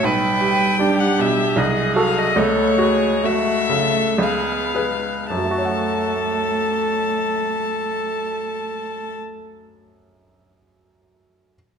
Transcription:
0.03 1.53 B1 medium
0.03 1.58 G3 medium
0.03 0.81 B4 medium
0.03 1.02 G5 medium
0.41 1.03 G4 soft
0.79 1.42 D4 medium
0.79 1.60 G4 medium
1.00 1.22 F#5 medium
1.19 1.58 B2 medium
1.19 1.59 E5 medium
1.56 2.34 C2 medium
1.56 2.39 F#3 medium
1.56 2.38 G#4 medium
1.56 1.96 D#5 medium
1.96 2.32 F#4 soft
1.96 2.33 A4 medium
1.96 2.20 F5 medium
2.18 2.40 D#5 medium
2.36 4.16 C#2 medium
2.36 3.23 A3 medium
2.36 2.81 A4 medium
2.36 3.27 C#5 medium
2.78 3.51 F#4 medium
2.78 3.26 G#4 medium
3.23 4.22 A3 medium
3.23 3.99 A3 medium
3.23 3.72 F#4 medium
3.23 4.24 E5 loud
3.69 4.20 C#3 soft
3.69 4.20 A4 medium
4.18 5.27 C#2 medium
4.18 5.03 B3 medium
4.18 4.75 G#4 medium
4.22 5.31 F5 medium
4.75 5.26 G#4 soft
4.75 5.27 B4 soft
5.30 9.14 F#2 soft
5.30 9.14 A3 medium
5.30 9.15 A4 soft
5.30 9.15 A5 medium
5.37 9.21 F#3 soft
5.44 9.28 A3 soft
5.51 9.34 F#4 soft
5.58 9.42 C#5 soft
5.65 9.49 F#5 soft

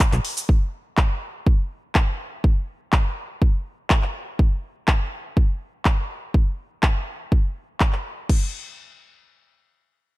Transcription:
0.00 kick loud
0.00 closed hi-hat medium
0.00 shaker medium
0.12 0.20 B1 medium
0.12 clap soft
0.12 closed hi-hat soft
0.12 shaker soft
0.25 open hi-hat loud
0.37 open hi-hat medium
0.37 shaker medium
0.49 kick loud
0.97 kick loud
0.97 clap loud
1.47 kick loud
1.95 kick loud
1.95 clap loud
2.44 kick loud
2.93 kick loud
2.93 clap loud
3.42 kick loud
3.90 kick loud
3.90 clap loud
4.02 clap soft
4.39 kick loud
4.88 kick loud
4.88 clap loud
5.37 kick loud
5.85 kick loud
5.85 clap loud
6.34 kick loud
6.83 kick loud
6.83 clap loud
7.32 kick loud
7.80 kick loud
7.80 clap loud
7.93 clap soft
8.29 kick loud
8.29 crash medium

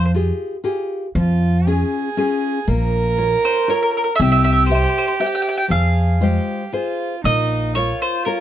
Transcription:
0.00 0.30 F2 medium
0.00 0.12 F3 medium
0.05 0.10 C5 soft
0.14 0.55 F4 soft
0.14 0.56 G4 soft
0.14 0.56 G#4 soft
0.64 1.06 F4 soft
0.64 1.06 G4 soft
0.64 1.06 G#4 medium
1.15 1.82 F2 medium
1.15 1.66 F3 soft
1.15 1.69 F4 medium
1.67 2.08 C#4 soft
1.67 2.08 F4 soft
1.67 2.08 G#4 medium
1.67 2.70 G#4 medium
2.17 2.58 C#4 medium
2.17 2.58 F4 soft
2.17 2.59 G#4 medium
2.68 3.34 A#1 medium
2.68 3.17 A#3 soft
2.68 4.23 A#4 loud
3.17 3.59 F4 soft
3.17 3.59 A#4 soft
3.17 3.59 C#5 soft
3.45 3.68 C5 medium
3.68 4.09 F4 soft
3.68 4.10 A#4 soft
3.68 3.74 A#4 medium
3.68 4.09 C#5 medium
3.75 3.81 A#4 soft
3.82 3.90 A#4 soft
3.91 3.96 A#4 soft
3.97 4.03 A#4 medium
4.04 4.12 A#4 medium
4.15 4.21 E5 medium
4.20 4.85 C2 loud
4.20 4.68 C4 medium
4.20 5.74 G4 medium
4.20 4.31 E5 medium
4.32 4.38 E5 medium
4.39 4.43 E5 soft
4.44 4.51 E5 medium
4.52 4.62 E5 medium
4.66 5.10 G4 soft
4.66 4.73 C5 medium
4.70 5.10 C5 soft
4.70 5.11 E5 soft
4.74 4.83 C5 medium
4.84 4.88 C5 medium
4.89 4.97 C5 soft
4.98 5.06 C5 medium
5.08 5.14 C5 medium
5.20 5.60 G4 medium
5.20 5.61 C5 soft
5.20 5.60 E5 medium
5.20 5.25 G5 medium
5.26 5.34 G5 medium
5.35 5.41 G5 medium
5.42 5.47 G5 medium
5.49 5.56 G5 medium
5.57 5.65 G5 medium
5.68 6.37 F2 medium
5.68 6.19 F3 soft
5.68 6.25 G#4 medium
5.68 6.70 F5 medium
6.21 6.63 G#3 soft
6.21 6.62 F4 soft
6.21 6.74 G4 medium
6.21 6.63 C5 soft
6.72 7.24 F4 medium
6.72 7.14 F4 soft
6.72 7.15 G#4 soft
6.72 7.14 C5 medium
7.24 7.91 A#1 medium
7.24 7.75 A#3 medium
7.24 7.79 D#4 medium
7.24 7.73 D#5 loud
7.75 8.16 F4 medium
7.75 8.40 F4 medium
7.75 8.17 A#4 soft
7.75 8.00 C#5 medium
7.75 8.17 C#5 soft
8.02 8.24 C5 medium
8.25 8.40 F4 medium
8.25 8.40 A#4 medium
8.25 8.40 A#4 soft
8.25 8.40 C#5 medium

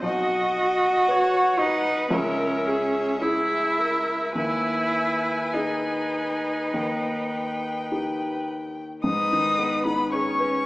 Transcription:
0.02 1.04 B1 medium
0.02 1.60 F#4 medium
0.02 1.12 D#5 medium
0.02 1.06 D#5 medium
1.07 2.08 F#4 soft
1.07 2.08 B4 soft
1.07 1.63 C#5 medium
1.07 1.58 F#5 soft
1.59 2.12 D#4 medium
1.59 2.15 B4 medium
1.59 2.11 F#5 medium
2.10 3.17 C#2 medium
2.10 3.23 C#4 medium
2.10 2.68 A#4 medium
2.10 3.19 E5 medium
2.67 3.21 G#4 medium
3.21 4.31 E4 soft
3.21 4.35 E4 medium
3.21 4.31 G#4 soft
3.21 3.79 G#4 medium
3.21 4.33 E5 soft
3.78 4.33 A#4 medium
4.34 5.50 D#2 soft
4.34 5.55 E4 medium
4.34 8.45 B4 soft
4.34 6.75 G#5 medium
5.53 7.91 D#4 medium
5.53 6.70 D#4 soft
5.53 6.70 G#4 soft
6.74 7.88 D#2 soft
6.74 8.84 G5 soft
7.92 9.01 D#4 soft
7.92 9.01 G4 soft
9.04 10.66 G#2 soft
9.04 9.87 D#4 medium
9.04 10.14 B4 soft
9.04 9.81 D#6 medium
9.32 9.75 D#3 soft
9.59 10.01 B3 soft
9.85 10.11 B3 soft
9.85 10.28 D#4 soft
9.85 10.12 B5 medium
10.11 10.66 C#4 medium
10.11 10.55 G#4 soft
10.11 10.66 C#5 soft
10.11 10.66 C#6 medium
10.40 10.66 B4 soft

